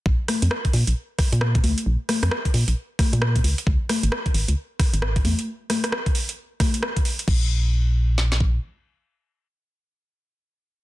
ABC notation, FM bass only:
X:1
M:4/4
L:1/16
Q:"Swing 16ths" 1/4=133
K:Db
V:1 name="FM bass" clef=bass
B,,, z2 F,, z2 B,, B,,, z3 B,,3 D,, z | B,,, z2 F,, z2 B,, B,,, z3 B,,3 D,, z | D,, z2 A,,, z2 A,,, D,, z3 A,,,3 _F,, z | z16 |
B,,,12 z4 | z16 |]